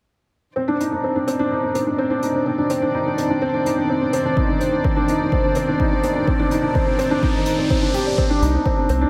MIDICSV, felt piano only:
0, 0, Header, 1, 2, 480
1, 0, Start_track
1, 0, Key_signature, -3, "minor"
1, 0, Tempo, 476190
1, 566, Time_signature, 4, 2, 24, 8
1, 9171, End_track
2, 0, Start_track
2, 0, Title_t, "Felt piano"
2, 0, Program_c, 0, 0
2, 564, Note_on_c, 0, 60, 72
2, 679, Note_off_c, 0, 60, 0
2, 683, Note_on_c, 0, 62, 74
2, 727, Control_c, 0, 64, 127
2, 799, Note_off_c, 0, 62, 0
2, 804, Note_on_c, 0, 63, 53
2, 919, Note_off_c, 0, 63, 0
2, 926, Note_on_c, 0, 62, 58
2, 1040, Note_off_c, 0, 62, 0
2, 1045, Note_on_c, 0, 60, 63
2, 1160, Note_off_c, 0, 60, 0
2, 1166, Note_on_c, 0, 62, 62
2, 1280, Note_off_c, 0, 62, 0
2, 1284, Note_on_c, 0, 60, 82
2, 1399, Note_off_c, 0, 60, 0
2, 1404, Note_on_c, 0, 62, 86
2, 1519, Note_off_c, 0, 62, 0
2, 1525, Note_on_c, 0, 63, 68
2, 1640, Note_off_c, 0, 63, 0
2, 1643, Note_on_c, 0, 62, 61
2, 1759, Note_off_c, 0, 62, 0
2, 1762, Note_on_c, 0, 60, 58
2, 1878, Note_off_c, 0, 60, 0
2, 1880, Note_on_c, 0, 62, 59
2, 1997, Note_off_c, 0, 62, 0
2, 2000, Note_on_c, 0, 60, 82
2, 2117, Note_off_c, 0, 60, 0
2, 2120, Note_on_c, 0, 62, 78
2, 2237, Note_off_c, 0, 62, 0
2, 2242, Note_on_c, 0, 63, 61
2, 2358, Note_off_c, 0, 63, 0
2, 2360, Note_on_c, 0, 62, 61
2, 2477, Note_off_c, 0, 62, 0
2, 2479, Note_on_c, 0, 60, 66
2, 2597, Note_off_c, 0, 60, 0
2, 2600, Note_on_c, 0, 62, 60
2, 2717, Note_off_c, 0, 62, 0
2, 2720, Note_on_c, 0, 60, 74
2, 2837, Note_off_c, 0, 60, 0
2, 2842, Note_on_c, 0, 62, 82
2, 2958, Note_off_c, 0, 62, 0
2, 2964, Note_on_c, 0, 63, 68
2, 3079, Note_off_c, 0, 63, 0
2, 3085, Note_on_c, 0, 62, 64
2, 3200, Note_off_c, 0, 62, 0
2, 3201, Note_on_c, 0, 60, 63
2, 3318, Note_off_c, 0, 60, 0
2, 3322, Note_on_c, 0, 62, 64
2, 3438, Note_off_c, 0, 62, 0
2, 3444, Note_on_c, 0, 60, 90
2, 3559, Note_off_c, 0, 60, 0
2, 3566, Note_on_c, 0, 62, 82
2, 3680, Note_off_c, 0, 62, 0
2, 3686, Note_on_c, 0, 63, 61
2, 3800, Note_off_c, 0, 63, 0
2, 3807, Note_on_c, 0, 62, 61
2, 3921, Note_off_c, 0, 62, 0
2, 3925, Note_on_c, 0, 60, 70
2, 4040, Note_off_c, 0, 60, 0
2, 4046, Note_on_c, 0, 62, 60
2, 4160, Note_off_c, 0, 62, 0
2, 4163, Note_on_c, 0, 60, 91
2, 4279, Note_off_c, 0, 60, 0
2, 4285, Note_on_c, 0, 62, 84
2, 4400, Note_off_c, 0, 62, 0
2, 4403, Note_on_c, 0, 63, 64
2, 4519, Note_off_c, 0, 63, 0
2, 4522, Note_on_c, 0, 62, 60
2, 4638, Note_off_c, 0, 62, 0
2, 4639, Note_on_c, 0, 60, 57
2, 4757, Note_off_c, 0, 60, 0
2, 4762, Note_on_c, 0, 62, 61
2, 4878, Note_off_c, 0, 62, 0
2, 4881, Note_on_c, 0, 60, 85
2, 4998, Note_off_c, 0, 60, 0
2, 5000, Note_on_c, 0, 62, 90
2, 5117, Note_off_c, 0, 62, 0
2, 5126, Note_on_c, 0, 63, 66
2, 5240, Note_off_c, 0, 63, 0
2, 5243, Note_on_c, 0, 62, 66
2, 5358, Note_off_c, 0, 62, 0
2, 5365, Note_on_c, 0, 60, 75
2, 5479, Note_off_c, 0, 60, 0
2, 5487, Note_on_c, 0, 62, 62
2, 5601, Note_off_c, 0, 62, 0
2, 5605, Note_on_c, 0, 60, 87
2, 5720, Note_off_c, 0, 60, 0
2, 5725, Note_on_c, 0, 62, 77
2, 5840, Note_off_c, 0, 62, 0
2, 5846, Note_on_c, 0, 63, 72
2, 5960, Note_off_c, 0, 63, 0
2, 5964, Note_on_c, 0, 62, 58
2, 6079, Note_off_c, 0, 62, 0
2, 6083, Note_on_c, 0, 60, 67
2, 6199, Note_off_c, 0, 60, 0
2, 6203, Note_on_c, 0, 62, 64
2, 6318, Note_off_c, 0, 62, 0
2, 6322, Note_on_c, 0, 60, 78
2, 6438, Note_off_c, 0, 60, 0
2, 6445, Note_on_c, 0, 62, 86
2, 6559, Note_off_c, 0, 62, 0
2, 6561, Note_on_c, 0, 63, 66
2, 6677, Note_off_c, 0, 63, 0
2, 6682, Note_on_c, 0, 62, 68
2, 6798, Note_off_c, 0, 62, 0
2, 6803, Note_on_c, 0, 60, 71
2, 6919, Note_off_c, 0, 60, 0
2, 6920, Note_on_c, 0, 62, 69
2, 7037, Note_off_c, 0, 62, 0
2, 7041, Note_on_c, 0, 60, 92
2, 7158, Note_off_c, 0, 60, 0
2, 7161, Note_on_c, 0, 62, 91
2, 7278, Note_off_c, 0, 62, 0
2, 7282, Note_on_c, 0, 63, 73
2, 7398, Note_off_c, 0, 63, 0
2, 7403, Note_on_c, 0, 62, 64
2, 7518, Note_off_c, 0, 62, 0
2, 7522, Note_on_c, 0, 63, 65
2, 7638, Note_off_c, 0, 63, 0
2, 7645, Note_on_c, 0, 60, 61
2, 7749, Note_off_c, 0, 60, 0
2, 7764, Note_on_c, 0, 60, 76
2, 7879, Note_off_c, 0, 60, 0
2, 7884, Note_on_c, 0, 62, 62
2, 7999, Note_off_c, 0, 62, 0
2, 8003, Note_on_c, 0, 67, 67
2, 8119, Note_off_c, 0, 67, 0
2, 8123, Note_on_c, 0, 74, 69
2, 8238, Note_off_c, 0, 74, 0
2, 8243, Note_on_c, 0, 60, 84
2, 8259, Control_c, 0, 64, 0
2, 8359, Note_off_c, 0, 60, 0
2, 8364, Note_on_c, 0, 62, 88
2, 8453, Control_c, 0, 64, 127
2, 8479, Note_off_c, 0, 62, 0
2, 8487, Note_on_c, 0, 63, 65
2, 8600, Note_off_c, 0, 63, 0
2, 8606, Note_on_c, 0, 62, 65
2, 8720, Note_off_c, 0, 62, 0
2, 8726, Note_on_c, 0, 60, 73
2, 8840, Note_off_c, 0, 60, 0
2, 8847, Note_on_c, 0, 62, 68
2, 8961, Note_off_c, 0, 62, 0
2, 8967, Note_on_c, 0, 60, 90
2, 9080, Note_off_c, 0, 60, 0
2, 9086, Note_on_c, 0, 62, 90
2, 9171, Note_off_c, 0, 62, 0
2, 9171, End_track
0, 0, End_of_file